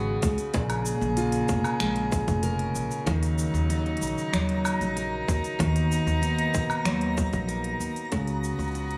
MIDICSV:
0, 0, Header, 1, 6, 480
1, 0, Start_track
1, 0, Key_signature, -6, "minor"
1, 0, Tempo, 631579
1, 413, Time_signature, 4, 2, 24, 8
1, 6823, End_track
2, 0, Start_track
2, 0, Title_t, "Synth texture"
2, 0, Program_c, 0, 99
2, 2333, Note_on_c, 0, 82, 84
2, 6823, Note_off_c, 0, 82, 0
2, 6823, End_track
3, 0, Start_track
3, 0, Title_t, "Steel-string acoustic guitar"
3, 0, Program_c, 1, 25
3, 0, Note_on_c, 1, 49, 90
3, 0, Note_on_c, 1, 56, 72
3, 0, Note_on_c, 1, 66, 69
3, 0, Note_on_c, 1, 68, 67
3, 408, Note_on_c, 1, 46, 85
3, 410, Note_off_c, 1, 49, 0
3, 458, Note_off_c, 1, 66, 0
3, 890, Note_on_c, 1, 65, 67
3, 1366, Note_off_c, 1, 56, 0
3, 1369, Note_on_c, 1, 56, 69
3, 1845, Note_off_c, 1, 68, 0
3, 1848, Note_on_c, 1, 70, 64
3, 2328, Note_on_c, 1, 51, 90
3, 2331, Note_off_c, 1, 46, 0
3, 2379, Note_off_c, 1, 56, 0
3, 2380, Note_off_c, 1, 65, 0
3, 2808, Note_on_c, 1, 63, 67
3, 3290, Note_on_c, 1, 54, 70
3, 3768, Note_off_c, 1, 70, 0
3, 3771, Note_on_c, 1, 70, 65
3, 4244, Note_off_c, 1, 51, 0
3, 4247, Note_on_c, 1, 51, 87
3, 4722, Note_off_c, 1, 63, 0
3, 4725, Note_on_c, 1, 63, 67
3, 5202, Note_off_c, 1, 54, 0
3, 5205, Note_on_c, 1, 54, 71
3, 5682, Note_off_c, 1, 70, 0
3, 5685, Note_on_c, 1, 70, 68
3, 6165, Note_off_c, 1, 51, 0
3, 6168, Note_on_c, 1, 49, 92
3, 6217, Note_off_c, 1, 63, 0
3, 6217, Note_off_c, 1, 70, 0
3, 6645, Note_on_c, 1, 66, 70
3, 6823, Note_off_c, 1, 49, 0
3, 6823, Note_off_c, 1, 54, 0
3, 6823, Note_off_c, 1, 66, 0
3, 6823, End_track
4, 0, Start_track
4, 0, Title_t, "String quartet"
4, 0, Program_c, 2, 48
4, 0, Note_on_c, 2, 49, 81
4, 0, Note_on_c, 2, 59, 73
4, 0, Note_on_c, 2, 66, 81
4, 398, Note_off_c, 2, 59, 0
4, 399, Note_off_c, 2, 66, 0
4, 403, Note_on_c, 2, 68, 81
4, 406, Note_on_c, 2, 58, 67
4, 2309, Note_off_c, 2, 68, 0
4, 2310, Note_off_c, 2, 58, 0
4, 2332, Note_on_c, 2, 54, 66
4, 2334, Note_on_c, 2, 63, 86
4, 4226, Note_off_c, 2, 49, 0
4, 4234, Note_off_c, 2, 54, 0
4, 4256, Note_on_c, 2, 58, 73
4, 4257, Note_on_c, 2, 59, 73
4, 6144, Note_off_c, 2, 63, 0
4, 6156, Note_off_c, 2, 58, 0
4, 6156, Note_off_c, 2, 59, 0
4, 6169, Note_on_c, 2, 66, 86
4, 6170, Note_on_c, 2, 59, 74
4, 6172, Note_on_c, 2, 49, 77
4, 6823, Note_off_c, 2, 49, 0
4, 6823, Note_off_c, 2, 59, 0
4, 6823, Note_off_c, 2, 66, 0
4, 6823, End_track
5, 0, Start_track
5, 0, Title_t, "Upright bass"
5, 0, Program_c, 3, 32
5, 0, Note_on_c, 3, 32, 92
5, 123, Note_off_c, 3, 32, 0
5, 174, Note_on_c, 3, 37, 88
5, 262, Note_off_c, 3, 37, 0
5, 413, Note_on_c, 3, 34, 94
5, 723, Note_off_c, 3, 34, 0
5, 770, Note_on_c, 3, 34, 97
5, 1082, Note_off_c, 3, 34, 0
5, 1130, Note_on_c, 3, 29, 82
5, 1221, Note_off_c, 3, 29, 0
5, 1376, Note_on_c, 3, 34, 76
5, 1732, Note_on_c, 3, 29, 83
5, 1743, Note_off_c, 3, 34, 0
5, 2042, Note_off_c, 3, 29, 0
5, 2091, Note_on_c, 3, 34, 80
5, 2181, Note_off_c, 3, 34, 0
5, 2335, Note_on_c, 3, 39, 96
5, 2644, Note_off_c, 3, 39, 0
5, 2688, Note_on_c, 3, 39, 100
5, 3001, Note_off_c, 3, 39, 0
5, 3053, Note_on_c, 3, 34, 80
5, 3142, Note_off_c, 3, 34, 0
5, 3294, Note_on_c, 3, 39, 78
5, 3654, Note_on_c, 3, 34, 82
5, 3665, Note_off_c, 3, 39, 0
5, 3964, Note_off_c, 3, 34, 0
5, 4014, Note_on_c, 3, 39, 87
5, 4102, Note_off_c, 3, 39, 0
5, 4255, Note_on_c, 3, 39, 91
5, 4564, Note_off_c, 3, 39, 0
5, 4610, Note_on_c, 3, 39, 99
5, 4922, Note_off_c, 3, 39, 0
5, 4974, Note_on_c, 3, 34, 81
5, 5062, Note_off_c, 3, 34, 0
5, 5211, Note_on_c, 3, 39, 85
5, 5575, Note_on_c, 3, 34, 90
5, 5586, Note_off_c, 3, 39, 0
5, 5884, Note_off_c, 3, 34, 0
5, 5928, Note_on_c, 3, 39, 90
5, 6020, Note_off_c, 3, 39, 0
5, 6173, Note_on_c, 3, 37, 97
5, 6483, Note_off_c, 3, 37, 0
5, 6525, Note_on_c, 3, 37, 95
5, 6823, Note_off_c, 3, 37, 0
5, 6823, End_track
6, 0, Start_track
6, 0, Title_t, "Drums"
6, 170, Note_on_c, 9, 42, 47
6, 173, Note_on_c, 9, 36, 109
6, 173, Note_on_c, 9, 82, 80
6, 246, Note_off_c, 9, 42, 0
6, 249, Note_off_c, 9, 36, 0
6, 249, Note_off_c, 9, 82, 0
6, 289, Note_on_c, 9, 42, 33
6, 292, Note_on_c, 9, 82, 36
6, 365, Note_off_c, 9, 42, 0
6, 368, Note_off_c, 9, 82, 0
6, 408, Note_on_c, 9, 42, 61
6, 411, Note_on_c, 9, 82, 47
6, 413, Note_on_c, 9, 36, 124
6, 484, Note_off_c, 9, 42, 0
6, 487, Note_off_c, 9, 82, 0
6, 489, Note_off_c, 9, 36, 0
6, 529, Note_on_c, 9, 42, 41
6, 529, Note_on_c, 9, 77, 53
6, 533, Note_on_c, 9, 82, 31
6, 605, Note_off_c, 9, 42, 0
6, 605, Note_off_c, 9, 77, 0
6, 609, Note_off_c, 9, 82, 0
6, 651, Note_on_c, 9, 82, 87
6, 727, Note_off_c, 9, 82, 0
6, 774, Note_on_c, 9, 82, 33
6, 850, Note_off_c, 9, 82, 0
6, 888, Note_on_c, 9, 42, 62
6, 892, Note_on_c, 9, 82, 46
6, 964, Note_off_c, 9, 42, 0
6, 968, Note_off_c, 9, 82, 0
6, 1006, Note_on_c, 9, 42, 41
6, 1009, Note_on_c, 9, 82, 30
6, 1082, Note_off_c, 9, 42, 0
6, 1085, Note_off_c, 9, 82, 0
6, 1130, Note_on_c, 9, 82, 75
6, 1132, Note_on_c, 9, 36, 106
6, 1206, Note_off_c, 9, 82, 0
6, 1208, Note_off_c, 9, 36, 0
6, 1250, Note_on_c, 9, 77, 61
6, 1253, Note_on_c, 9, 82, 37
6, 1326, Note_off_c, 9, 77, 0
6, 1329, Note_off_c, 9, 82, 0
6, 1369, Note_on_c, 9, 26, 79
6, 1369, Note_on_c, 9, 42, 60
6, 1372, Note_on_c, 9, 82, 47
6, 1445, Note_off_c, 9, 26, 0
6, 1445, Note_off_c, 9, 42, 0
6, 1448, Note_off_c, 9, 82, 0
6, 1487, Note_on_c, 9, 42, 40
6, 1563, Note_off_c, 9, 42, 0
6, 1613, Note_on_c, 9, 36, 98
6, 1613, Note_on_c, 9, 82, 80
6, 1689, Note_off_c, 9, 36, 0
6, 1689, Note_off_c, 9, 82, 0
6, 1731, Note_on_c, 9, 42, 29
6, 1733, Note_on_c, 9, 36, 62
6, 1735, Note_on_c, 9, 82, 35
6, 1807, Note_off_c, 9, 42, 0
6, 1809, Note_off_c, 9, 36, 0
6, 1811, Note_off_c, 9, 82, 0
6, 1846, Note_on_c, 9, 42, 63
6, 1849, Note_on_c, 9, 82, 47
6, 1922, Note_off_c, 9, 42, 0
6, 1925, Note_off_c, 9, 82, 0
6, 1970, Note_on_c, 9, 42, 42
6, 2046, Note_off_c, 9, 42, 0
6, 2093, Note_on_c, 9, 82, 90
6, 2169, Note_off_c, 9, 82, 0
6, 2213, Note_on_c, 9, 82, 38
6, 2289, Note_off_c, 9, 82, 0
6, 2332, Note_on_c, 9, 42, 64
6, 2335, Note_on_c, 9, 36, 122
6, 2335, Note_on_c, 9, 82, 45
6, 2408, Note_off_c, 9, 42, 0
6, 2411, Note_off_c, 9, 36, 0
6, 2411, Note_off_c, 9, 82, 0
6, 2452, Note_on_c, 9, 42, 43
6, 2456, Note_on_c, 9, 82, 29
6, 2528, Note_off_c, 9, 42, 0
6, 2532, Note_off_c, 9, 82, 0
6, 2572, Note_on_c, 9, 82, 78
6, 2648, Note_off_c, 9, 82, 0
6, 2696, Note_on_c, 9, 82, 32
6, 2772, Note_off_c, 9, 82, 0
6, 2812, Note_on_c, 9, 42, 60
6, 2816, Note_on_c, 9, 82, 45
6, 2888, Note_off_c, 9, 42, 0
6, 2892, Note_off_c, 9, 82, 0
6, 2934, Note_on_c, 9, 42, 18
6, 3010, Note_off_c, 9, 42, 0
6, 3016, Note_on_c, 9, 42, 24
6, 3055, Note_on_c, 9, 82, 81
6, 3092, Note_off_c, 9, 42, 0
6, 3096, Note_on_c, 9, 42, 33
6, 3131, Note_off_c, 9, 82, 0
6, 3172, Note_off_c, 9, 42, 0
6, 3178, Note_on_c, 9, 82, 32
6, 3254, Note_off_c, 9, 82, 0
6, 3295, Note_on_c, 9, 26, 71
6, 3295, Note_on_c, 9, 42, 65
6, 3298, Note_on_c, 9, 82, 45
6, 3371, Note_off_c, 9, 26, 0
6, 3371, Note_off_c, 9, 42, 0
6, 3374, Note_off_c, 9, 82, 0
6, 3412, Note_on_c, 9, 42, 41
6, 3488, Note_off_c, 9, 42, 0
6, 3534, Note_on_c, 9, 77, 84
6, 3538, Note_on_c, 9, 82, 76
6, 3610, Note_off_c, 9, 77, 0
6, 3614, Note_off_c, 9, 82, 0
6, 3657, Note_on_c, 9, 42, 29
6, 3660, Note_on_c, 9, 82, 33
6, 3733, Note_off_c, 9, 42, 0
6, 3736, Note_off_c, 9, 82, 0
6, 3776, Note_on_c, 9, 42, 57
6, 3779, Note_on_c, 9, 82, 42
6, 3852, Note_off_c, 9, 42, 0
6, 3855, Note_off_c, 9, 82, 0
6, 4016, Note_on_c, 9, 36, 105
6, 4019, Note_on_c, 9, 82, 81
6, 4092, Note_off_c, 9, 36, 0
6, 4095, Note_off_c, 9, 82, 0
6, 4137, Note_on_c, 9, 42, 32
6, 4140, Note_on_c, 9, 82, 35
6, 4213, Note_off_c, 9, 42, 0
6, 4216, Note_off_c, 9, 82, 0
6, 4255, Note_on_c, 9, 36, 117
6, 4257, Note_on_c, 9, 42, 69
6, 4261, Note_on_c, 9, 82, 45
6, 4331, Note_off_c, 9, 36, 0
6, 4333, Note_off_c, 9, 42, 0
6, 4337, Note_off_c, 9, 82, 0
6, 4376, Note_on_c, 9, 42, 43
6, 4379, Note_on_c, 9, 82, 30
6, 4452, Note_off_c, 9, 42, 0
6, 4455, Note_off_c, 9, 82, 0
6, 4498, Note_on_c, 9, 82, 75
6, 4574, Note_off_c, 9, 82, 0
6, 4617, Note_on_c, 9, 82, 32
6, 4693, Note_off_c, 9, 82, 0
6, 4733, Note_on_c, 9, 42, 64
6, 4737, Note_on_c, 9, 82, 42
6, 4809, Note_off_c, 9, 42, 0
6, 4813, Note_off_c, 9, 82, 0
6, 4852, Note_on_c, 9, 42, 43
6, 4928, Note_off_c, 9, 42, 0
6, 4972, Note_on_c, 9, 82, 78
6, 4975, Note_on_c, 9, 36, 99
6, 5048, Note_off_c, 9, 82, 0
6, 5051, Note_off_c, 9, 36, 0
6, 5090, Note_on_c, 9, 77, 65
6, 5094, Note_on_c, 9, 82, 33
6, 5166, Note_off_c, 9, 77, 0
6, 5170, Note_off_c, 9, 82, 0
6, 5210, Note_on_c, 9, 26, 74
6, 5210, Note_on_c, 9, 42, 66
6, 5213, Note_on_c, 9, 82, 45
6, 5286, Note_off_c, 9, 26, 0
6, 5286, Note_off_c, 9, 42, 0
6, 5289, Note_off_c, 9, 82, 0
6, 5329, Note_on_c, 9, 42, 41
6, 5405, Note_off_c, 9, 42, 0
6, 5453, Note_on_c, 9, 82, 77
6, 5454, Note_on_c, 9, 36, 109
6, 5529, Note_off_c, 9, 82, 0
6, 5530, Note_off_c, 9, 36, 0
6, 5569, Note_on_c, 9, 42, 30
6, 5573, Note_on_c, 9, 82, 32
6, 5574, Note_on_c, 9, 36, 59
6, 5645, Note_off_c, 9, 42, 0
6, 5649, Note_off_c, 9, 82, 0
6, 5650, Note_off_c, 9, 36, 0
6, 5690, Note_on_c, 9, 42, 63
6, 5693, Note_on_c, 9, 82, 43
6, 5766, Note_off_c, 9, 42, 0
6, 5769, Note_off_c, 9, 82, 0
6, 5808, Note_on_c, 9, 42, 46
6, 5884, Note_off_c, 9, 42, 0
6, 5933, Note_on_c, 9, 82, 85
6, 6009, Note_off_c, 9, 82, 0
6, 6051, Note_on_c, 9, 42, 33
6, 6055, Note_on_c, 9, 82, 34
6, 6127, Note_off_c, 9, 42, 0
6, 6131, Note_off_c, 9, 82, 0
6, 6169, Note_on_c, 9, 42, 69
6, 6172, Note_on_c, 9, 82, 43
6, 6173, Note_on_c, 9, 36, 118
6, 6245, Note_off_c, 9, 42, 0
6, 6248, Note_off_c, 9, 82, 0
6, 6249, Note_off_c, 9, 36, 0
6, 6289, Note_on_c, 9, 42, 42
6, 6292, Note_on_c, 9, 82, 29
6, 6365, Note_off_c, 9, 42, 0
6, 6368, Note_off_c, 9, 82, 0
6, 6414, Note_on_c, 9, 82, 78
6, 6490, Note_off_c, 9, 82, 0
6, 6533, Note_on_c, 9, 82, 30
6, 6564, Note_off_c, 9, 82, 0
6, 6564, Note_on_c, 9, 82, 25
6, 6592, Note_off_c, 9, 82, 0
6, 6592, Note_on_c, 9, 82, 19
6, 6622, Note_off_c, 9, 82, 0
6, 6622, Note_on_c, 9, 82, 16
6, 6651, Note_on_c, 9, 42, 73
6, 6654, Note_off_c, 9, 82, 0
6, 6654, Note_on_c, 9, 82, 45
6, 6682, Note_off_c, 9, 82, 0
6, 6682, Note_on_c, 9, 82, 11
6, 6727, Note_off_c, 9, 42, 0
6, 6745, Note_off_c, 9, 82, 0
6, 6745, Note_on_c, 9, 82, 7
6, 6768, Note_on_c, 9, 42, 45
6, 6821, Note_off_c, 9, 82, 0
6, 6823, Note_off_c, 9, 42, 0
6, 6823, End_track
0, 0, End_of_file